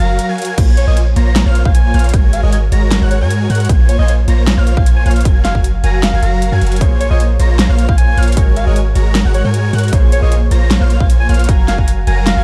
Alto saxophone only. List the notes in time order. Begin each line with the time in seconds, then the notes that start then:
Already playing: F5
0.77 C#5
0.87 D#5
1.65 F5
1.74 G#5
2.33 F5
2.43 D#5
2.52 D#5
3.11 C#5
3.21 C#5
3.89 C#5
3.99 D#5
4.77 F5
4.96 G#5
5.06 G#5
5.45 F5
5.84 G#5
5.94 G#5
6.03 F5
7.01 C#5
7.11 D#5
7.89 F5
7.98 G#5
8.56 F5
8.67 D#5
8.76 D#5
9.34 C#5
9.45 C#5
10.12 C#5
10.23 D#5
11.00 F5
11.20 G#5
11.29 G#5
11.68 F5
12.07 G#5
12.17 G#5
12.27 F5